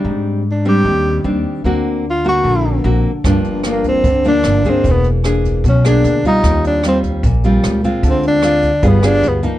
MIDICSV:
0, 0, Header, 1, 5, 480
1, 0, Start_track
1, 0, Tempo, 399467
1, 58, Time_signature, 4, 2, 24, 8
1, 11519, End_track
2, 0, Start_track
2, 0, Title_t, "Tenor saxophone"
2, 0, Program_c, 0, 66
2, 616, Note_on_c, 0, 62, 68
2, 803, Note_off_c, 0, 62, 0
2, 826, Note_on_c, 0, 67, 96
2, 1475, Note_off_c, 0, 67, 0
2, 2527, Note_on_c, 0, 65, 80
2, 2720, Note_off_c, 0, 65, 0
2, 2747, Note_on_c, 0, 66, 88
2, 3396, Note_off_c, 0, 66, 0
2, 4466, Note_on_c, 0, 58, 65
2, 4650, Note_off_c, 0, 58, 0
2, 4668, Note_on_c, 0, 60, 88
2, 5093, Note_off_c, 0, 60, 0
2, 5144, Note_on_c, 0, 62, 90
2, 5640, Note_on_c, 0, 60, 85
2, 5658, Note_off_c, 0, 62, 0
2, 5902, Note_on_c, 0, 59, 78
2, 5920, Note_off_c, 0, 60, 0
2, 6102, Note_off_c, 0, 59, 0
2, 6837, Note_on_c, 0, 61, 74
2, 7035, Note_off_c, 0, 61, 0
2, 7051, Note_on_c, 0, 62, 80
2, 7483, Note_off_c, 0, 62, 0
2, 7540, Note_on_c, 0, 63, 89
2, 7968, Note_off_c, 0, 63, 0
2, 8018, Note_on_c, 0, 62, 85
2, 8224, Note_off_c, 0, 62, 0
2, 8272, Note_on_c, 0, 60, 81
2, 8400, Note_off_c, 0, 60, 0
2, 9730, Note_on_c, 0, 60, 77
2, 9920, Note_off_c, 0, 60, 0
2, 9945, Note_on_c, 0, 62, 100
2, 10666, Note_on_c, 0, 59, 72
2, 10684, Note_off_c, 0, 62, 0
2, 10882, Note_on_c, 0, 62, 101
2, 10900, Note_off_c, 0, 59, 0
2, 11151, Note_on_c, 0, 59, 74
2, 11169, Note_off_c, 0, 62, 0
2, 11364, Note_off_c, 0, 59, 0
2, 11519, End_track
3, 0, Start_track
3, 0, Title_t, "Nylon-string guitar"
3, 0, Program_c, 1, 24
3, 0, Note_on_c, 1, 55, 59
3, 0, Note_on_c, 1, 60, 60
3, 0, Note_on_c, 1, 62, 74
3, 62, Note_on_c, 1, 44, 57
3, 499, Note_off_c, 1, 55, 0
3, 503, Note_off_c, 1, 60, 0
3, 506, Note_off_c, 1, 62, 0
3, 785, Note_on_c, 1, 55, 61
3, 791, Note_on_c, 1, 60, 57
3, 795, Note_on_c, 1, 62, 58
3, 997, Note_off_c, 1, 44, 0
3, 1024, Note_on_c, 1, 51, 57
3, 1464, Note_off_c, 1, 55, 0
3, 1466, Note_off_c, 1, 60, 0
3, 1469, Note_off_c, 1, 62, 0
3, 1493, Note_on_c, 1, 55, 52
3, 1500, Note_on_c, 1, 60, 53
3, 1504, Note_on_c, 1, 62, 53
3, 1938, Note_off_c, 1, 55, 0
3, 1941, Note_off_c, 1, 60, 0
3, 1944, Note_off_c, 1, 62, 0
3, 1958, Note_off_c, 1, 51, 0
3, 1983, Note_on_c, 1, 50, 57
3, 1983, Note_on_c, 1, 58, 56
3, 1991, Note_on_c, 1, 60, 59
3, 1996, Note_on_c, 1, 66, 67
3, 2458, Note_off_c, 1, 58, 0
3, 2463, Note_off_c, 1, 60, 0
3, 2464, Note_off_c, 1, 66, 0
3, 2699, Note_on_c, 1, 58, 56
3, 2705, Note_on_c, 1, 60, 53
3, 2711, Note_on_c, 1, 66, 64
3, 2919, Note_off_c, 1, 50, 0
3, 2931, Note_on_c, 1, 50, 55
3, 3382, Note_off_c, 1, 58, 0
3, 3385, Note_off_c, 1, 60, 0
3, 3388, Note_off_c, 1, 66, 0
3, 3420, Note_on_c, 1, 58, 62
3, 3425, Note_on_c, 1, 60, 50
3, 3428, Note_on_c, 1, 66, 54
3, 3730, Note_off_c, 1, 58, 0
3, 3731, Note_off_c, 1, 60, 0
3, 3734, Note_off_c, 1, 66, 0
3, 3873, Note_off_c, 1, 50, 0
3, 3903, Note_on_c, 1, 43, 59
3, 3905, Note_on_c, 1, 53, 62
3, 3912, Note_on_c, 1, 58, 60
3, 3918, Note_on_c, 1, 62, 67
3, 4345, Note_off_c, 1, 53, 0
3, 4349, Note_off_c, 1, 58, 0
3, 4350, Note_off_c, 1, 62, 0
3, 4391, Note_on_c, 1, 53, 55
3, 4398, Note_on_c, 1, 58, 59
3, 4405, Note_on_c, 1, 62, 55
3, 4839, Note_off_c, 1, 43, 0
3, 4864, Note_off_c, 1, 53, 0
3, 4866, Note_on_c, 1, 50, 57
3, 4868, Note_off_c, 1, 58, 0
3, 4869, Note_off_c, 1, 62, 0
3, 5107, Note_on_c, 1, 53, 60
3, 5114, Note_on_c, 1, 58, 66
3, 5114, Note_on_c, 1, 62, 74
3, 5547, Note_off_c, 1, 53, 0
3, 5549, Note_off_c, 1, 58, 0
3, 5550, Note_off_c, 1, 62, 0
3, 5590, Note_on_c, 1, 58, 63
3, 5595, Note_on_c, 1, 62, 56
3, 5602, Note_on_c, 1, 68, 66
3, 5800, Note_off_c, 1, 50, 0
3, 5827, Note_on_c, 1, 52, 57
3, 6268, Note_off_c, 1, 58, 0
3, 6272, Note_off_c, 1, 62, 0
3, 6272, Note_off_c, 1, 68, 0
3, 6307, Note_on_c, 1, 58, 52
3, 6309, Note_on_c, 1, 62, 54
3, 6315, Note_on_c, 1, 68, 65
3, 6761, Note_off_c, 1, 52, 0
3, 6782, Note_off_c, 1, 58, 0
3, 6782, Note_off_c, 1, 62, 0
3, 6786, Note_off_c, 1, 68, 0
3, 6792, Note_on_c, 1, 47, 54
3, 7025, Note_on_c, 1, 58, 56
3, 7029, Note_on_c, 1, 62, 64
3, 7035, Note_on_c, 1, 68, 72
3, 7465, Note_off_c, 1, 62, 0
3, 7466, Note_off_c, 1, 58, 0
3, 7470, Note_off_c, 1, 68, 0
3, 7516, Note_on_c, 1, 55, 63
3, 7519, Note_on_c, 1, 60, 64
3, 7525, Note_on_c, 1, 65, 68
3, 7723, Note_off_c, 1, 47, 0
3, 7753, Note_on_c, 1, 51, 57
3, 8190, Note_off_c, 1, 55, 0
3, 8190, Note_off_c, 1, 60, 0
3, 8194, Note_off_c, 1, 65, 0
3, 8229, Note_on_c, 1, 55, 58
3, 8238, Note_on_c, 1, 60, 54
3, 8244, Note_on_c, 1, 65, 61
3, 8683, Note_off_c, 1, 51, 0
3, 8702, Note_off_c, 1, 55, 0
3, 8704, Note_on_c, 1, 46, 57
3, 8706, Note_off_c, 1, 60, 0
3, 8709, Note_off_c, 1, 65, 0
3, 8945, Note_on_c, 1, 55, 58
3, 8951, Note_on_c, 1, 60, 66
3, 8958, Note_on_c, 1, 65, 71
3, 9384, Note_off_c, 1, 55, 0
3, 9386, Note_off_c, 1, 60, 0
3, 9390, Note_off_c, 1, 65, 0
3, 9423, Note_on_c, 1, 56, 62
3, 9428, Note_on_c, 1, 60, 61
3, 9434, Note_on_c, 1, 65, 69
3, 9637, Note_off_c, 1, 46, 0
3, 9658, Note_on_c, 1, 50, 60
3, 10102, Note_off_c, 1, 56, 0
3, 10105, Note_off_c, 1, 60, 0
3, 10106, Note_off_c, 1, 65, 0
3, 10133, Note_on_c, 1, 56, 56
3, 10139, Note_on_c, 1, 60, 59
3, 10148, Note_on_c, 1, 65, 66
3, 10458, Note_off_c, 1, 56, 0
3, 10461, Note_off_c, 1, 60, 0
3, 10465, Note_off_c, 1, 65, 0
3, 10594, Note_off_c, 1, 50, 0
3, 10602, Note_on_c, 1, 55, 59
3, 10607, Note_on_c, 1, 59, 54
3, 10612, Note_on_c, 1, 65, 58
3, 10616, Note_on_c, 1, 68, 62
3, 10812, Note_off_c, 1, 59, 0
3, 10816, Note_off_c, 1, 65, 0
3, 10818, Note_off_c, 1, 68, 0
3, 10848, Note_on_c, 1, 59, 68
3, 10852, Note_on_c, 1, 65, 64
3, 10861, Note_on_c, 1, 68, 72
3, 11295, Note_off_c, 1, 65, 0
3, 11296, Note_off_c, 1, 59, 0
3, 11296, Note_off_c, 1, 68, 0
3, 11325, Note_off_c, 1, 55, 0
3, 11330, Note_on_c, 1, 53, 64
3, 11336, Note_on_c, 1, 58, 61
3, 11343, Note_on_c, 1, 63, 74
3, 11519, Note_off_c, 1, 53, 0
3, 11519, Note_off_c, 1, 58, 0
3, 11519, Note_off_c, 1, 63, 0
3, 11519, End_track
4, 0, Start_track
4, 0, Title_t, "Upright bass"
4, 0, Program_c, 2, 32
4, 54, Note_on_c, 2, 44, 89
4, 969, Note_off_c, 2, 44, 0
4, 1015, Note_on_c, 2, 39, 92
4, 1463, Note_off_c, 2, 39, 0
4, 1493, Note_on_c, 2, 39, 89
4, 1719, Note_off_c, 2, 39, 0
4, 1973, Note_on_c, 2, 38, 86
4, 2889, Note_off_c, 2, 38, 0
4, 2934, Note_on_c, 2, 34, 85
4, 3384, Note_off_c, 2, 34, 0
4, 3413, Note_on_c, 2, 34, 96
4, 3640, Note_off_c, 2, 34, 0
4, 3897, Note_on_c, 2, 31, 90
4, 4812, Note_off_c, 2, 31, 0
4, 4854, Note_on_c, 2, 38, 93
4, 5304, Note_off_c, 2, 38, 0
4, 5345, Note_on_c, 2, 31, 92
4, 5567, Note_off_c, 2, 31, 0
4, 5816, Note_on_c, 2, 28, 88
4, 6731, Note_off_c, 2, 28, 0
4, 6777, Note_on_c, 2, 35, 88
4, 7225, Note_off_c, 2, 35, 0
4, 7258, Note_on_c, 2, 38, 96
4, 7483, Note_off_c, 2, 38, 0
4, 7736, Note_on_c, 2, 39, 93
4, 8650, Note_off_c, 2, 39, 0
4, 8690, Note_on_c, 2, 34, 94
4, 9141, Note_off_c, 2, 34, 0
4, 9176, Note_on_c, 2, 37, 98
4, 9401, Note_off_c, 2, 37, 0
4, 9650, Note_on_c, 2, 38, 93
4, 10565, Note_off_c, 2, 38, 0
4, 10609, Note_on_c, 2, 31, 98
4, 11059, Note_off_c, 2, 31, 0
4, 11092, Note_on_c, 2, 38, 95
4, 11317, Note_off_c, 2, 38, 0
4, 11519, End_track
5, 0, Start_track
5, 0, Title_t, "Drums"
5, 3896, Note_on_c, 9, 36, 60
5, 3897, Note_on_c, 9, 37, 58
5, 3897, Note_on_c, 9, 42, 43
5, 4016, Note_off_c, 9, 36, 0
5, 4018, Note_off_c, 9, 37, 0
5, 4018, Note_off_c, 9, 42, 0
5, 4137, Note_on_c, 9, 42, 26
5, 4257, Note_off_c, 9, 42, 0
5, 4368, Note_on_c, 9, 37, 57
5, 4368, Note_on_c, 9, 42, 46
5, 4488, Note_off_c, 9, 37, 0
5, 4488, Note_off_c, 9, 42, 0
5, 4614, Note_on_c, 9, 36, 24
5, 4614, Note_on_c, 9, 42, 30
5, 4734, Note_off_c, 9, 42, 0
5, 4735, Note_off_c, 9, 36, 0
5, 4854, Note_on_c, 9, 36, 63
5, 4855, Note_on_c, 9, 42, 43
5, 4974, Note_off_c, 9, 36, 0
5, 4975, Note_off_c, 9, 42, 0
5, 5094, Note_on_c, 9, 42, 28
5, 5214, Note_off_c, 9, 42, 0
5, 5330, Note_on_c, 9, 37, 57
5, 5330, Note_on_c, 9, 42, 38
5, 5450, Note_off_c, 9, 37, 0
5, 5450, Note_off_c, 9, 42, 0
5, 5575, Note_on_c, 9, 36, 26
5, 5580, Note_on_c, 9, 42, 28
5, 5695, Note_off_c, 9, 36, 0
5, 5700, Note_off_c, 9, 42, 0
5, 5817, Note_on_c, 9, 36, 60
5, 5822, Note_on_c, 9, 42, 45
5, 5937, Note_off_c, 9, 36, 0
5, 5943, Note_off_c, 9, 42, 0
5, 6054, Note_on_c, 9, 42, 25
5, 6174, Note_off_c, 9, 42, 0
5, 6298, Note_on_c, 9, 37, 53
5, 6298, Note_on_c, 9, 42, 40
5, 6419, Note_off_c, 9, 37, 0
5, 6419, Note_off_c, 9, 42, 0
5, 6539, Note_on_c, 9, 36, 25
5, 6548, Note_on_c, 9, 42, 26
5, 6659, Note_off_c, 9, 36, 0
5, 6668, Note_off_c, 9, 42, 0
5, 6778, Note_on_c, 9, 36, 62
5, 6782, Note_on_c, 9, 42, 38
5, 6898, Note_off_c, 9, 36, 0
5, 6902, Note_off_c, 9, 42, 0
5, 7026, Note_on_c, 9, 37, 58
5, 7026, Note_on_c, 9, 42, 26
5, 7146, Note_off_c, 9, 37, 0
5, 7146, Note_off_c, 9, 42, 0
5, 7259, Note_on_c, 9, 42, 40
5, 7379, Note_off_c, 9, 42, 0
5, 7499, Note_on_c, 9, 36, 26
5, 7508, Note_on_c, 9, 42, 27
5, 7619, Note_off_c, 9, 36, 0
5, 7628, Note_off_c, 9, 42, 0
5, 7736, Note_on_c, 9, 36, 64
5, 7736, Note_on_c, 9, 37, 58
5, 7736, Note_on_c, 9, 42, 45
5, 7856, Note_off_c, 9, 36, 0
5, 7856, Note_off_c, 9, 37, 0
5, 7856, Note_off_c, 9, 42, 0
5, 7979, Note_on_c, 9, 42, 26
5, 8100, Note_off_c, 9, 42, 0
5, 8212, Note_on_c, 9, 37, 55
5, 8212, Note_on_c, 9, 42, 45
5, 8333, Note_off_c, 9, 37, 0
5, 8333, Note_off_c, 9, 42, 0
5, 8453, Note_on_c, 9, 36, 25
5, 8454, Note_on_c, 9, 42, 30
5, 8573, Note_off_c, 9, 36, 0
5, 8574, Note_off_c, 9, 42, 0
5, 8692, Note_on_c, 9, 36, 58
5, 8693, Note_on_c, 9, 42, 48
5, 8812, Note_off_c, 9, 36, 0
5, 8813, Note_off_c, 9, 42, 0
5, 8934, Note_on_c, 9, 42, 26
5, 9054, Note_off_c, 9, 42, 0
5, 9177, Note_on_c, 9, 37, 59
5, 9177, Note_on_c, 9, 42, 42
5, 9297, Note_off_c, 9, 37, 0
5, 9297, Note_off_c, 9, 42, 0
5, 9412, Note_on_c, 9, 36, 25
5, 9420, Note_on_c, 9, 42, 26
5, 9532, Note_off_c, 9, 36, 0
5, 9541, Note_off_c, 9, 42, 0
5, 9651, Note_on_c, 9, 42, 45
5, 9652, Note_on_c, 9, 36, 59
5, 9771, Note_off_c, 9, 42, 0
5, 9772, Note_off_c, 9, 36, 0
5, 9890, Note_on_c, 9, 42, 23
5, 10010, Note_off_c, 9, 42, 0
5, 10123, Note_on_c, 9, 37, 60
5, 10123, Note_on_c, 9, 42, 41
5, 10243, Note_off_c, 9, 37, 0
5, 10243, Note_off_c, 9, 42, 0
5, 10366, Note_on_c, 9, 42, 28
5, 10367, Note_on_c, 9, 36, 24
5, 10486, Note_off_c, 9, 42, 0
5, 10487, Note_off_c, 9, 36, 0
5, 10604, Note_on_c, 9, 42, 41
5, 10608, Note_on_c, 9, 36, 58
5, 10724, Note_off_c, 9, 42, 0
5, 10728, Note_off_c, 9, 36, 0
5, 10848, Note_on_c, 9, 37, 57
5, 10848, Note_on_c, 9, 42, 25
5, 10968, Note_off_c, 9, 37, 0
5, 10968, Note_off_c, 9, 42, 0
5, 11093, Note_on_c, 9, 42, 44
5, 11213, Note_off_c, 9, 42, 0
5, 11329, Note_on_c, 9, 36, 24
5, 11329, Note_on_c, 9, 42, 28
5, 11449, Note_off_c, 9, 36, 0
5, 11449, Note_off_c, 9, 42, 0
5, 11519, End_track
0, 0, End_of_file